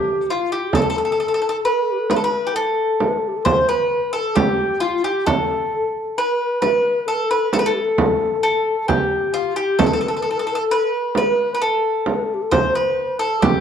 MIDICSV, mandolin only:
0, 0, Header, 1, 2, 480
1, 0, Start_track
1, 0, Tempo, 906344
1, 387, Time_signature, 10, 3, 24, 8
1, 7205, End_track
2, 0, Start_track
2, 0, Title_t, "Mandolin"
2, 0, Program_c, 0, 25
2, 0, Note_on_c, 0, 67, 78
2, 0, Note_on_c, 0, 69, 69
2, 124, Note_off_c, 0, 69, 0
2, 159, Note_off_c, 0, 67, 0
2, 161, Note_on_c, 0, 65, 78
2, 274, Note_off_c, 0, 65, 0
2, 276, Note_on_c, 0, 67, 68
2, 395, Note_off_c, 0, 67, 0
2, 397, Note_on_c, 0, 69, 90
2, 426, Note_off_c, 0, 69, 0
2, 433, Note_on_c, 0, 69, 59
2, 469, Note_off_c, 0, 69, 0
2, 476, Note_on_c, 0, 69, 72
2, 512, Note_off_c, 0, 69, 0
2, 519, Note_on_c, 0, 69, 55
2, 549, Note_off_c, 0, 69, 0
2, 555, Note_on_c, 0, 69, 58
2, 587, Note_off_c, 0, 69, 0
2, 593, Note_on_c, 0, 69, 54
2, 630, Note_off_c, 0, 69, 0
2, 635, Note_on_c, 0, 69, 59
2, 670, Note_off_c, 0, 69, 0
2, 679, Note_on_c, 0, 69, 54
2, 704, Note_off_c, 0, 69, 0
2, 711, Note_on_c, 0, 69, 65
2, 744, Note_off_c, 0, 69, 0
2, 750, Note_on_c, 0, 69, 59
2, 783, Note_off_c, 0, 69, 0
2, 789, Note_on_c, 0, 69, 68
2, 827, Note_off_c, 0, 69, 0
2, 874, Note_on_c, 0, 71, 87
2, 1109, Note_off_c, 0, 71, 0
2, 1116, Note_on_c, 0, 71, 91
2, 1144, Note_off_c, 0, 71, 0
2, 1146, Note_on_c, 0, 69, 70
2, 1182, Note_off_c, 0, 69, 0
2, 1186, Note_on_c, 0, 71, 90
2, 1306, Note_on_c, 0, 67, 70
2, 1345, Note_off_c, 0, 67, 0
2, 1354, Note_off_c, 0, 71, 0
2, 1355, Note_on_c, 0, 69, 85
2, 1809, Note_off_c, 0, 69, 0
2, 1827, Note_on_c, 0, 72, 93
2, 1950, Note_off_c, 0, 72, 0
2, 1952, Note_on_c, 0, 71, 87
2, 2184, Note_off_c, 0, 71, 0
2, 2186, Note_on_c, 0, 69, 87
2, 2306, Note_on_c, 0, 67, 84
2, 2309, Note_off_c, 0, 69, 0
2, 2542, Note_off_c, 0, 67, 0
2, 2544, Note_on_c, 0, 65, 86
2, 2668, Note_off_c, 0, 65, 0
2, 2670, Note_on_c, 0, 67, 81
2, 2786, Note_off_c, 0, 67, 0
2, 2788, Note_on_c, 0, 69, 94
2, 3273, Note_on_c, 0, 71, 91
2, 3281, Note_off_c, 0, 69, 0
2, 3499, Note_off_c, 0, 71, 0
2, 3505, Note_on_c, 0, 71, 89
2, 3728, Note_off_c, 0, 71, 0
2, 3749, Note_on_c, 0, 69, 90
2, 3868, Note_off_c, 0, 69, 0
2, 3870, Note_on_c, 0, 71, 85
2, 3988, Note_off_c, 0, 71, 0
2, 3990, Note_on_c, 0, 69, 100
2, 4018, Note_off_c, 0, 69, 0
2, 4020, Note_on_c, 0, 71, 88
2, 4057, Note_on_c, 0, 69, 94
2, 4058, Note_off_c, 0, 71, 0
2, 4459, Note_off_c, 0, 69, 0
2, 4465, Note_on_c, 0, 69, 88
2, 4702, Note_off_c, 0, 69, 0
2, 4704, Note_on_c, 0, 67, 90
2, 4942, Note_off_c, 0, 67, 0
2, 4945, Note_on_c, 0, 65, 89
2, 5062, Note_off_c, 0, 65, 0
2, 5064, Note_on_c, 0, 67, 84
2, 5183, Note_on_c, 0, 69, 92
2, 5189, Note_off_c, 0, 67, 0
2, 5218, Note_off_c, 0, 69, 0
2, 5224, Note_on_c, 0, 69, 63
2, 5254, Note_off_c, 0, 69, 0
2, 5260, Note_on_c, 0, 69, 71
2, 5294, Note_off_c, 0, 69, 0
2, 5300, Note_on_c, 0, 69, 56
2, 5334, Note_off_c, 0, 69, 0
2, 5340, Note_on_c, 0, 69, 62
2, 5378, Note_off_c, 0, 69, 0
2, 5384, Note_on_c, 0, 69, 53
2, 5408, Note_off_c, 0, 69, 0
2, 5414, Note_on_c, 0, 69, 63
2, 5452, Note_off_c, 0, 69, 0
2, 5458, Note_on_c, 0, 69, 53
2, 5498, Note_off_c, 0, 69, 0
2, 5504, Note_on_c, 0, 69, 62
2, 5537, Note_off_c, 0, 69, 0
2, 5544, Note_on_c, 0, 69, 62
2, 5581, Note_off_c, 0, 69, 0
2, 5588, Note_on_c, 0, 69, 75
2, 5626, Note_off_c, 0, 69, 0
2, 5674, Note_on_c, 0, 71, 94
2, 5912, Note_off_c, 0, 71, 0
2, 5918, Note_on_c, 0, 71, 87
2, 6108, Note_off_c, 0, 71, 0
2, 6114, Note_on_c, 0, 71, 70
2, 6149, Note_off_c, 0, 71, 0
2, 6152, Note_on_c, 0, 69, 87
2, 6628, Note_on_c, 0, 72, 90
2, 6644, Note_off_c, 0, 69, 0
2, 6751, Note_off_c, 0, 72, 0
2, 6754, Note_on_c, 0, 71, 80
2, 6985, Note_off_c, 0, 71, 0
2, 6987, Note_on_c, 0, 69, 81
2, 7109, Note_on_c, 0, 67, 85
2, 7111, Note_off_c, 0, 69, 0
2, 7205, Note_off_c, 0, 67, 0
2, 7205, End_track
0, 0, End_of_file